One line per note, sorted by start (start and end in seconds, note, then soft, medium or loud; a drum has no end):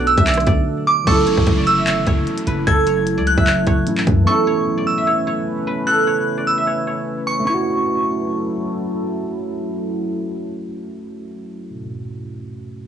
0.00 0.15 B1 loud
0.00 1.04 D3 medium
0.00 1.02 F#3 medium
0.00 1.02 A3 medium
0.00 1.03 B3 medium
0.00 1.04 B3 medium
0.00 1.04 D4 medium
0.00 1.05 F#4 medium
0.00 1.04 A4 medium
0.00 1.07 A4 medium
0.00 1.32 B4 medium
0.00 0.27 D5 medium
0.00 0.17 E5 medium
0.07 0.26 E6 medium
0.07 closed hi-hat soft
0.18 0.46 B1 loud
0.18 1.77 E5 medium
0.18 kick loud
0.18 closed hi-hat medium
0.27 0.47 D5 medium
0.27 clap loud
0.27 closed hi-hat medium
0.34 cross-stick loud
0.34 closed hi-hat medium
0.40 closed hi-hat soft
0.47 0.67 B1 loud
0.47 1.33 D5 medium
0.47 kick medium
0.47 closed hi-hat medium
0.87 1.06 D6 medium
1.04 1.28 F#1 loud
1.04 3.81 E3 medium
1.04 3.82 F#3 medium
1.04 4.24 F#3 medium
1.04 3.83 A3 medium
1.04 4.24 E4 medium
1.04 4.24 A4 medium
1.04 2.67 A4 loud
1.04 1.63 C#6 medium
1.04 kick loud
1.04 closed hi-hat medium
1.04 downlifter medium
1.09 3.84 C#4 medium
1.09 3.85 E4 medium
1.27 1.37 A1 loud
1.27 1.63 C#5 medium
1.27 closed hi-hat medium
1.38 1.47 F#1 loud
1.38 kick medium
1.47 2.05 F#1 loud
1.47 kick medium
1.47 closed hi-hat medium
1.57 1.93 D5 medium
1.67 1.86 E6 medium
1.67 closed hi-hat medium
1.78 3.37 E5 medium
1.87 2.07 C#5 medium
1.87 clap loud
1.87 closed hi-hat medium
2.07 2.26 F#1 loud
2.07 2.87 C#5 medium
2.07 kick medium
2.07 closed hi-hat medium
2.27 closed hi-hat medium
2.38 closed hi-hat medium
2.47 2.66 F#1 loud
2.47 4.52 B4 medium
2.47 closed hi-hat medium
2.67 3.19 F#1 loud
2.67 4.27 A4 medium
2.67 3.23 G#6 medium
2.67 kick loud
2.67 closed hi-hat medium
2.87 3.24 C#5 medium
2.87 closed hi-hat medium
3.07 closed hi-hat medium
3.18 3.37 C#2 loud
3.18 3.53 D5 medium
3.27 3.46 F#6 medium
3.27 closed hi-hat medium
3.38 3.66 F#1 loud
3.38 4.97 E5 medium
3.38 kick loud
3.47 3.67 C#5 medium
3.47 clap loud
3.47 closed hi-hat medium
3.67 3.86 F#1 loud
3.67 4.47 C#5 medium
3.67 kick medium
3.67 closed hi-hat medium
3.85 4.22 E3 medium
3.85 4.26 F#3 soft
3.85 4.23 A3 medium
3.85 4.27 C#4 soft
3.85 4.28 E4 medium
3.85 closed hi-hat medium
3.98 clap medium
4.07 4.26 F#2 loud
4.07 kick loud
4.07 closed hi-hat medium
4.23 7.41 E3 medium
4.23 7.39 A3 medium
4.23 7.43 B3 medium
4.27 7.44 A3 medium
4.27 7.44 C#4 medium
4.27 7.43 C#4 medium
4.27 7.45 E4 medium
4.27 5.87 A4 loud
4.27 7.44 B4 medium
4.27 4.83 C#6 medium
4.47 4.84 C#5 medium
4.78 5.13 D5 medium
4.87 5.06 E6 medium
4.98 6.57 E5 medium
5.07 5.27 C#5 medium
5.27 6.07 C#5 medium
5.67 7.72 B4 medium
5.87 8.07 A4 medium
5.87 6.43 F#6 loud
6.07 6.44 C#5 medium
6.38 6.73 D5 medium
6.47 6.66 E6 medium
6.58 8.30 E5 medium
6.67 6.87 C#5 medium
6.87 7.47 C#5 medium
7.27 7.46 C#6 medium
7.40 11.69 A3 medium
7.45 11.43 F#3 medium
7.45 11.73 C#4 medium
7.45 11.43 E4 medium
7.45 11.43 A4 medium
7.45 9.38 C#5 medium
7.45 8.63 C#6 medium
7.49 11.78 E4 medium
7.54 11.83 F#4 medium